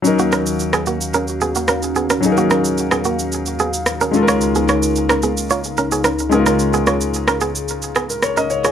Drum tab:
SH |xxxxxxxxxxxxxxxx|xxxxxxxxxxxxxxxx|xxxxxxxxxxxxxxxx|xxxxxxxxxxxxxxxx|
SD |--r--r------r--r|--r--r------r--r|--r--r------r--r|--r--r----r-r--r|